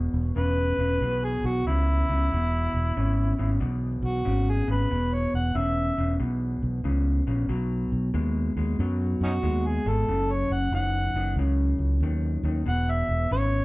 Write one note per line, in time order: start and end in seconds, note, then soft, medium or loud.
0.00 0.32 E2 medium
0.00 0.32 B2 medium
0.14 0.32 E1 medium
0.36 0.71 E1 medium
0.36 0.75 E2 medium
0.36 0.75 C#3 medium
0.36 1.26 B4 loud
0.78 0.97 E1 medium
0.78 0.99 E2 medium
0.78 1.00 C#3 medium
1.01 1.36 B1 medium
1.01 1.62 E2 medium
1.01 1.62 B2 medium
1.24 1.47 G#4 medium
1.44 1.62 B1 medium
1.44 1.66 F#4 medium
1.67 2.02 C#2 medium
1.67 2.05 E2 medium
1.67 2.05 C#3 medium
1.67 3.57 E4 loud
2.09 2.27 C#2 medium
2.09 2.29 E2 medium
2.09 2.29 C#3 medium
2.32 2.66 E1 medium
2.32 2.92 E2 medium
2.32 2.92 B2 medium
2.74 2.92 E1 medium
2.97 3.32 G#1 medium
2.97 3.35 E2 medium
2.97 3.35 C#3 medium
3.38 3.57 G#1 medium
3.38 3.58 E2 medium
3.38 3.59 C#3 medium
3.60 3.96 B1 medium
3.60 4.21 E2 medium
3.60 4.21 B2 medium
4.03 4.21 B1 medium
4.03 4.52 F#4 medium
4.25 4.61 G#1 medium
4.25 4.63 E2 medium
4.25 4.64 C#3 medium
4.50 4.69 G#4 medium
4.68 4.86 G#1 medium
4.68 4.88 E2 medium
4.68 4.88 C#3 medium
4.68 5.15 B4 medium
4.90 5.25 E1 medium
4.90 5.50 E2 medium
4.90 5.51 B2 medium
5.14 5.34 C#5 medium
5.34 5.52 E1 medium
5.34 5.58 F#5 medium
5.55 5.90 E1 medium
5.55 5.93 E2 medium
5.55 5.93 C#3 medium
5.55 6.18 E5 medium
5.98 6.16 E1 medium
5.98 6.17 E2 medium
5.98 6.18 C#3 medium
6.20 6.55 B1 medium
6.20 6.80 E2 medium
6.20 6.80 B2 medium
6.62 6.81 B1 medium
6.84 7.20 C#2 medium
6.84 7.22 E2 medium
6.84 7.23 C#3 medium
7.27 7.45 A#1 medium
7.27 7.47 E2 medium
7.27 7.47 C#3 medium
7.49 7.84 B1 medium
7.49 8.09 B2 medium
7.49 8.09 F#3 medium
7.92 8.10 B1 medium
8.14 8.49 D#2 medium
8.14 8.52 B2 medium
8.14 8.52 G#3 medium
8.56 8.75 D#2 medium
8.56 8.76 B2 medium
8.56 8.77 G#3 medium
8.79 9.14 F#2 medium
8.79 9.39 B2 medium
8.79 9.40 F#3 medium
9.20 9.39 F#2 medium
9.20 9.31 C#4 medium
9.20 9.32 D#4 medium
9.20 9.68 F#4 medium
9.43 9.78 D#2 medium
9.43 9.81 B2 medium
9.43 9.82 G#3 medium
9.67 9.90 G#4 medium
9.86 10.04 G#1 medium
9.86 10.06 B2 medium
9.86 10.06 G#3 medium
9.86 10.33 A4 medium
10.08 10.43 F#1 medium
10.08 10.68 F#2 medium
10.08 10.69 C#3 medium
10.32 10.54 C#5 medium
10.50 10.68 F#1 medium
10.50 10.73 F#5 medium
10.72 11.07 F#1 medium
10.72 11.11 F#2 medium
10.72 11.11 D#3 medium
10.72 11.36 F#5 medium
11.14 11.33 F#1 medium
11.14 11.35 F#2 medium
11.14 11.36 D#3 medium
11.36 11.71 C#2 medium
11.36 11.98 F#2 medium
11.36 11.98 C#3 medium
11.79 11.97 C#2 medium
12.00 12.36 D#2 medium
12.00 12.41 F#2 medium
12.00 12.41 D#3 medium
12.43 12.62 D#2 medium
12.43 12.64 F#2 medium
12.43 12.65 D#3 medium
12.66 13.01 E1 medium
12.66 13.26 E2 medium
12.66 13.27 B2 medium
12.66 12.92 F#5 medium
12.91 13.31 E5 medium
13.09 13.27 E1 medium
13.31 13.65 G#1 medium
13.31 13.65 E2 medium
13.31 13.65 C#3 medium
13.31 13.65 C#5 medium